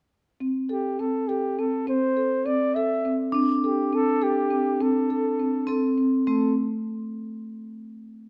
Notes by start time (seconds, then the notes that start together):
0.40 C4
0.69 G4 A4
1.00 C4 A4
1.28 G4 A4
1.59 C4 A4
1.87 C4 C5
2.17 A4
2.46 C4 D5
2.75 A4 E5
3.05 C4
3.32 C4 D4
3.64 G4 A4
3.93 C4 A4
4.22 G4 A4
4.51 C4
4.81 C4 A4
5.10 A4
5.39 C4
5.67 C4 A4
5.98 C4
6.27 A3 C4 A4